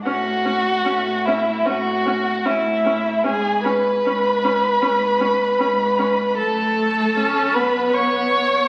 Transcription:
0, 0, Header, 1, 5, 480
1, 0, Start_track
1, 0, Key_signature, 3, "major"
1, 0, Tempo, 802139
1, 27, Time_signature, 4, 2, 24, 8
1, 2427, Tempo, 777202
1, 5283, End_track
2, 0, Start_track
2, 0, Title_t, "Violin"
2, 0, Program_c, 0, 40
2, 26, Note_on_c, 0, 78, 86
2, 752, Note_on_c, 0, 76, 66
2, 761, Note_off_c, 0, 78, 0
2, 990, Note_on_c, 0, 78, 69
2, 999, Note_off_c, 0, 76, 0
2, 1471, Note_on_c, 0, 76, 71
2, 1480, Note_off_c, 0, 78, 0
2, 1944, Note_off_c, 0, 76, 0
2, 1947, Note_on_c, 0, 80, 76
2, 2175, Note_on_c, 0, 83, 84
2, 2184, Note_off_c, 0, 80, 0
2, 3854, Note_off_c, 0, 83, 0
2, 3858, Note_on_c, 0, 81, 95
2, 4581, Note_on_c, 0, 83, 91
2, 4590, Note_off_c, 0, 81, 0
2, 4824, Note_on_c, 0, 85, 86
2, 4833, Note_off_c, 0, 83, 0
2, 5283, Note_off_c, 0, 85, 0
2, 5283, End_track
3, 0, Start_track
3, 0, Title_t, "Violin"
3, 0, Program_c, 1, 40
3, 35, Note_on_c, 1, 66, 72
3, 750, Note_on_c, 1, 64, 56
3, 759, Note_off_c, 1, 66, 0
3, 988, Note_on_c, 1, 66, 72
3, 997, Note_off_c, 1, 64, 0
3, 1469, Note_on_c, 1, 64, 60
3, 1478, Note_off_c, 1, 66, 0
3, 1941, Note_off_c, 1, 64, 0
3, 1944, Note_on_c, 1, 68, 71
3, 2179, Note_off_c, 1, 68, 0
3, 2183, Note_on_c, 1, 71, 73
3, 3840, Note_off_c, 1, 71, 0
3, 3859, Note_on_c, 1, 69, 75
3, 4576, Note_on_c, 1, 71, 72
3, 4585, Note_off_c, 1, 69, 0
3, 4823, Note_on_c, 1, 73, 84
3, 4832, Note_off_c, 1, 71, 0
3, 5283, Note_off_c, 1, 73, 0
3, 5283, End_track
4, 0, Start_track
4, 0, Title_t, "Viola"
4, 0, Program_c, 2, 41
4, 34, Note_on_c, 2, 61, 51
4, 81, Note_off_c, 2, 61, 0
4, 269, Note_on_c, 2, 61, 44
4, 317, Note_off_c, 2, 61, 0
4, 509, Note_on_c, 2, 61, 46
4, 557, Note_off_c, 2, 61, 0
4, 761, Note_on_c, 2, 61, 50
4, 809, Note_off_c, 2, 61, 0
4, 992, Note_on_c, 2, 61, 51
4, 1039, Note_off_c, 2, 61, 0
4, 1231, Note_on_c, 2, 61, 49
4, 1279, Note_off_c, 2, 61, 0
4, 1467, Note_on_c, 2, 61, 52
4, 1515, Note_off_c, 2, 61, 0
4, 1706, Note_on_c, 2, 61, 46
4, 1753, Note_off_c, 2, 61, 0
4, 1940, Note_on_c, 2, 61, 52
4, 1988, Note_off_c, 2, 61, 0
4, 2182, Note_on_c, 2, 61, 50
4, 2230, Note_off_c, 2, 61, 0
4, 2426, Note_on_c, 2, 61, 51
4, 2476, Note_off_c, 2, 61, 0
4, 2664, Note_on_c, 2, 61, 52
4, 2714, Note_off_c, 2, 61, 0
4, 2899, Note_on_c, 2, 61, 56
4, 2948, Note_off_c, 2, 61, 0
4, 3134, Note_on_c, 2, 61, 51
4, 3183, Note_off_c, 2, 61, 0
4, 3376, Note_on_c, 2, 61, 55
4, 3426, Note_off_c, 2, 61, 0
4, 3617, Note_on_c, 2, 61, 44
4, 3667, Note_off_c, 2, 61, 0
4, 3859, Note_on_c, 2, 57, 57
4, 4345, Note_on_c, 2, 61, 62
4, 4354, Note_off_c, 2, 57, 0
4, 4585, Note_on_c, 2, 59, 60
4, 4594, Note_off_c, 2, 61, 0
4, 5283, Note_off_c, 2, 59, 0
4, 5283, End_track
5, 0, Start_track
5, 0, Title_t, "Cello"
5, 0, Program_c, 3, 42
5, 27, Note_on_c, 3, 45, 57
5, 449, Note_off_c, 3, 45, 0
5, 510, Note_on_c, 3, 45, 60
5, 934, Note_off_c, 3, 45, 0
5, 988, Note_on_c, 3, 45, 60
5, 1411, Note_off_c, 3, 45, 0
5, 1469, Note_on_c, 3, 45, 62
5, 1888, Note_off_c, 3, 45, 0
5, 1948, Note_on_c, 3, 44, 61
5, 2374, Note_off_c, 3, 44, 0
5, 2426, Note_on_c, 3, 44, 59
5, 2848, Note_off_c, 3, 44, 0
5, 2898, Note_on_c, 3, 44, 61
5, 3323, Note_off_c, 3, 44, 0
5, 3385, Note_on_c, 3, 44, 64
5, 3811, Note_off_c, 3, 44, 0
5, 3862, Note_on_c, 3, 42, 59
5, 5283, Note_off_c, 3, 42, 0
5, 5283, End_track
0, 0, End_of_file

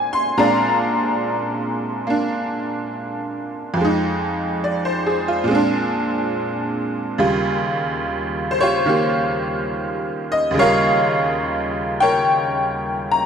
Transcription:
0, 0, Header, 1, 2, 480
1, 0, Start_track
1, 0, Tempo, 848656
1, 218, Time_signature, 4, 2, 24, 8
1, 7498, End_track
2, 0, Start_track
2, 0, Title_t, "Honky-tonk piano"
2, 0, Program_c, 0, 3
2, 0, Control_c, 0, 64, 127
2, 0, Note_on_c, 0, 46, 55
2, 0, Note_on_c, 0, 56, 46
2, 0, Note_on_c, 0, 60, 47
2, 0, Note_on_c, 0, 62, 59
2, 0, Note_on_c, 0, 72, 56
2, 0, Note_on_c, 0, 74, 60
2, 0, Note_on_c, 0, 79, 82
2, 0, Note_on_c, 0, 80, 80
2, 73, Note_on_c, 0, 84, 93
2, 201, Note_off_c, 0, 46, 0
2, 204, Note_off_c, 0, 56, 0
2, 208, Note_off_c, 0, 60, 0
2, 212, Note_on_c, 0, 46, 52
2, 213, Note_off_c, 0, 62, 0
2, 213, Note_on_c, 0, 56, 44
2, 214, Note_on_c, 0, 82, 91
2, 217, Note_on_c, 0, 60, 46
2, 221, Note_on_c, 0, 62, 55
2, 221, Note_on_c, 0, 77, 60
2, 224, Note_off_c, 0, 74, 0
2, 224, Note_on_c, 0, 74, 65
2, 225, Note_off_c, 0, 84, 0
2, 1153, Note_off_c, 0, 82, 0
2, 1157, Note_off_c, 0, 77, 0
2, 1158, Note_off_c, 0, 74, 0
2, 1170, Note_on_c, 0, 58, 48
2, 1179, Note_off_c, 0, 62, 0
2, 1188, Note_on_c, 0, 62, 52
2, 2113, Note_on_c, 0, 41, 52
2, 2132, Note_on_c, 0, 53, 47
2, 2134, Note_off_c, 0, 58, 0
2, 2135, Note_off_c, 0, 46, 0
2, 2135, Note_off_c, 0, 56, 0
2, 2137, Note_off_c, 0, 60, 0
2, 2143, Note_off_c, 0, 62, 0
2, 2145, Control_c, 0, 64, 0
2, 2147, Note_off_c, 0, 80, 0
2, 2149, Note_off_c, 0, 72, 0
2, 2149, Note_off_c, 0, 79, 0
2, 2152, Note_on_c, 0, 56, 51
2, 2175, Note_on_c, 0, 63, 59
2, 2256, Control_c, 0, 64, 127
2, 2623, Note_on_c, 0, 74, 48
2, 2743, Note_on_c, 0, 72, 47
2, 2850, Note_off_c, 0, 74, 0
2, 2864, Note_on_c, 0, 68, 43
2, 2949, Note_off_c, 0, 72, 0
2, 2986, Note_on_c, 0, 65, 53
2, 3008, Note_off_c, 0, 68, 0
2, 3076, Note_on_c, 0, 46, 63
2, 3085, Note_off_c, 0, 41, 0
2, 3088, Note_off_c, 0, 56, 0
2, 3095, Note_off_c, 0, 53, 0
2, 3097, Note_on_c, 0, 56, 58
2, 3104, Control_c, 0, 64, 0
2, 3115, Note_on_c, 0, 60, 57
2, 3116, Note_off_c, 0, 63, 0
2, 3137, Note_on_c, 0, 62, 68
2, 3150, Note_off_c, 0, 65, 0
2, 3198, Control_c, 0, 64, 127
2, 4046, Note_off_c, 0, 46, 0
2, 4057, Note_off_c, 0, 56, 0
2, 4063, Note_on_c, 0, 39, 53
2, 4065, Control_c, 0, 64, 0
2, 4065, Note_on_c, 0, 49, 45
2, 4066, Note_off_c, 0, 60, 0
2, 4067, Note_on_c, 0, 55, 48
2, 4070, Note_on_c, 0, 65, 62
2, 4077, Note_off_c, 0, 62, 0
2, 4168, Control_c, 0, 64, 127
2, 4813, Note_on_c, 0, 72, 59
2, 4867, Note_off_c, 0, 72, 0
2, 4867, Note_on_c, 0, 73, 75
2, 4871, Note_off_c, 0, 65, 0
2, 4877, Note_on_c, 0, 67, 52
2, 4880, Note_on_c, 0, 65, 49
2, 5010, Note_on_c, 0, 51, 47
2, 5017, Note_on_c, 0, 58, 40
2, 5021, Note_off_c, 0, 67, 0
2, 5029, Note_on_c, 0, 67, 49
2, 5809, Note_off_c, 0, 65, 0
2, 5835, Note_on_c, 0, 75, 85
2, 5854, Note_off_c, 0, 73, 0
2, 5934, Note_off_c, 0, 39, 0
2, 5943, Note_on_c, 0, 39, 54
2, 5952, Note_off_c, 0, 49, 0
2, 5960, Note_on_c, 0, 49, 51
2, 5972, Note_off_c, 0, 51, 0
2, 5973, Note_off_c, 0, 55, 0
2, 5976, Note_off_c, 0, 58, 0
2, 5981, Note_on_c, 0, 55, 50
2, 5982, Note_off_c, 0, 67, 0
2, 5985, Note_off_c, 0, 75, 0
2, 5991, Note_on_c, 0, 73, 71
2, 5991, Note_on_c, 0, 77, 94
2, 5993, Note_on_c, 0, 70, 67
2, 6003, Note_on_c, 0, 65, 66
2, 6769, Note_off_c, 0, 77, 0
2, 6789, Note_on_c, 0, 79, 101
2, 6790, Note_off_c, 0, 70, 0
2, 6790, Note_off_c, 0, 73, 0
2, 6798, Note_on_c, 0, 73, 61
2, 6799, Note_on_c, 0, 70, 59
2, 7243, Note_off_c, 0, 79, 0
2, 7418, Note_on_c, 0, 82, 100
2, 7498, Note_off_c, 0, 39, 0
2, 7498, Note_off_c, 0, 49, 0
2, 7498, Note_off_c, 0, 55, 0
2, 7498, Note_off_c, 0, 65, 0
2, 7498, Note_off_c, 0, 70, 0
2, 7498, Note_off_c, 0, 73, 0
2, 7498, Note_off_c, 0, 82, 0
2, 7498, End_track
0, 0, End_of_file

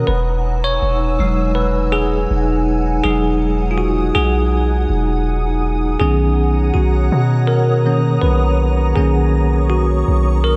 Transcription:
0, 0, Header, 1, 4, 480
1, 0, Start_track
1, 0, Tempo, 740741
1, 54, Time_signature, 4, 2, 24, 8
1, 6846, End_track
2, 0, Start_track
2, 0, Title_t, "Ambient pad"
2, 0, Program_c, 0, 92
2, 53, Note_on_c, 0, 80, 75
2, 54, Note_on_c, 0, 63, 81
2, 54, Note_on_c, 0, 88, 91
2, 55, Note_on_c, 0, 78, 75
2, 1955, Note_off_c, 0, 88, 0
2, 1974, Note_on_c, 0, 87, 93
2, 3868, Note_off_c, 0, 63, 0
2, 3868, Note_off_c, 0, 78, 0
2, 3868, Note_off_c, 0, 80, 0
2, 3892, Note_on_c, 0, 73, 82
2, 3892, Note_on_c, 0, 78, 75
2, 3893, Note_on_c, 0, 82, 76
2, 5794, Note_off_c, 0, 78, 0
2, 5815, Note_on_c, 0, 85, 77
2, 6846, Note_off_c, 0, 73, 0
2, 6846, Note_off_c, 0, 82, 0
2, 6846, Note_off_c, 0, 85, 0
2, 6846, Note_off_c, 0, 87, 0
2, 6846, End_track
3, 0, Start_track
3, 0, Title_t, "Tine electric piano"
3, 0, Program_c, 1, 4
3, 0, Control_c, 1, 64, 127
3, 0, Note_on_c, 1, 51, 51
3, 0, Note_on_c, 1, 70, 89
3, 47, Note_on_c, 1, 71, 94
3, 61, Control_c, 1, 64, 0
3, 66, Note_off_c, 1, 70, 0
3, 67, Note_off_c, 1, 51, 0
3, 187, Control_c, 1, 64, 127
3, 415, Note_on_c, 1, 73, 100
3, 431, Note_off_c, 1, 71, 0
3, 770, Note_on_c, 1, 54, 54
3, 775, Note_on_c, 1, 56, 49
3, 779, Note_on_c, 1, 63, 60
3, 1005, Note_on_c, 1, 71, 88
3, 1027, Note_off_c, 1, 73, 0
3, 1246, Note_on_c, 1, 68, 81
3, 1257, Note_off_c, 1, 71, 0
3, 1704, Note_off_c, 1, 68, 0
3, 1964, Note_off_c, 1, 54, 0
3, 1967, Note_on_c, 1, 68, 104
3, 1968, Note_off_c, 1, 56, 0
3, 1972, Note_off_c, 1, 63, 0
3, 1972, Note_on_c, 1, 54, 56
3, 1975, Note_on_c, 1, 56, 51
3, 1980, Note_on_c, 1, 63, 62
3, 2403, Note_on_c, 1, 65, 66
3, 2422, Note_off_c, 1, 68, 0
3, 2447, Note_on_c, 1, 66, 89
3, 2449, Note_off_c, 1, 65, 0
3, 2688, Note_on_c, 1, 68, 87
3, 2698, Note_off_c, 1, 66, 0
3, 3385, Note_off_c, 1, 68, 0
3, 3867, Note_off_c, 1, 54, 0
3, 3869, Note_off_c, 1, 56, 0
3, 3871, Note_off_c, 1, 63, 0
3, 3885, Note_on_c, 1, 68, 88
3, 3891, Note_on_c, 1, 51, 56
3, 3895, Note_on_c, 1, 59, 48
3, 3898, Note_on_c, 1, 61, 62
3, 3901, Control_c, 1, 64, 0
3, 4006, Control_c, 1, 64, 127
3, 4343, Note_off_c, 1, 68, 0
3, 4366, Note_on_c, 1, 66, 79
3, 4843, Note_on_c, 1, 70, 88
3, 4864, Note_off_c, 1, 66, 0
3, 5084, Note_off_c, 1, 51, 0
3, 5089, Note_off_c, 1, 61, 0
3, 5091, Note_on_c, 1, 51, 49
3, 5094, Note_on_c, 1, 58, 47
3, 5097, Note_on_c, 1, 61, 51
3, 5308, Note_off_c, 1, 51, 0
3, 5310, Note_off_c, 1, 58, 0
3, 5312, Note_off_c, 1, 61, 0
3, 5323, Note_on_c, 1, 71, 92
3, 5343, Note_off_c, 1, 70, 0
3, 5672, Note_off_c, 1, 71, 0
3, 5788, Note_off_c, 1, 59, 0
3, 5803, Note_on_c, 1, 68, 95
3, 5809, Note_on_c, 1, 51, 56
3, 5813, Note_on_c, 1, 58, 50
3, 5817, Note_on_c, 1, 61, 60
3, 6283, Note_on_c, 1, 66, 92
3, 6303, Note_off_c, 1, 68, 0
3, 6505, Note_off_c, 1, 51, 0
3, 6507, Note_off_c, 1, 58, 0
3, 6510, Note_off_c, 1, 61, 0
3, 6765, Note_on_c, 1, 70, 96
3, 6783, Note_off_c, 1, 66, 0
3, 6846, Note_off_c, 1, 70, 0
3, 6846, End_track
4, 0, Start_track
4, 0, Title_t, "808-style bass"
4, 0, Program_c, 2, 38
4, 53, Note_on_c, 2, 28, 109
4, 514, Note_off_c, 2, 28, 0
4, 532, Note_on_c, 2, 28, 102
4, 764, Note_off_c, 2, 28, 0
4, 773, Note_on_c, 2, 28, 101
4, 1468, Note_off_c, 2, 28, 0
4, 1494, Note_on_c, 2, 28, 96
4, 1955, Note_off_c, 2, 28, 0
4, 1974, Note_on_c, 2, 28, 109
4, 2668, Note_off_c, 2, 28, 0
4, 2693, Note_on_c, 2, 35, 103
4, 3154, Note_off_c, 2, 35, 0
4, 3173, Note_on_c, 2, 28, 101
4, 3867, Note_off_c, 2, 28, 0
4, 3893, Note_on_c, 2, 35, 105
4, 4354, Note_off_c, 2, 35, 0
4, 4373, Note_on_c, 2, 35, 93
4, 4604, Note_off_c, 2, 35, 0
4, 4614, Note_on_c, 2, 47, 105
4, 5308, Note_off_c, 2, 47, 0
4, 5333, Note_on_c, 2, 35, 99
4, 5794, Note_off_c, 2, 35, 0
4, 5812, Note_on_c, 2, 35, 105
4, 6507, Note_off_c, 2, 35, 0
4, 6533, Note_on_c, 2, 35, 100
4, 6846, Note_off_c, 2, 35, 0
4, 6846, End_track
0, 0, End_of_file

